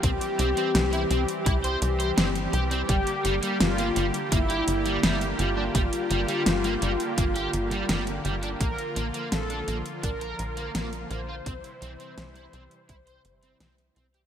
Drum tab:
HH |xxxxxxxxxxxxxxxx|xxxxxxxxxxxxxxx-|xxxxxxxxxxxxxxxx|xxxxxxxxxxxxxxx-|
SD |----o-------o---|----o-------o---|----o-------o---|----o-------o---|
BD |o-------o-------|o-------o-------|o-------o-------|o-------o-------|

HH |xxxxxxxxxxxxxxxx|
SD |----o-------o---|
BD |o-------o-------|